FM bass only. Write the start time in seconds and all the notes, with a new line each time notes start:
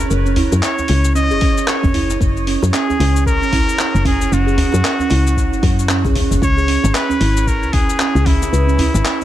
0.10 F#1
0.52 F#2
0.89 C#2
1.31 F#1
1.83 F#1
2.21 F#1
2.63 F#2
3.00 C#2
3.42 F#1
3.94 F#1
4.32 F#1
4.74 F#2
5.11 C#2
5.52 F#1
5.63 F#2
6.31 F#1
6.42 C#2
6.84 G#1
7.21 G#1
7.63 C#2
8.15 C#2
8.53 C#2
8.94 G#1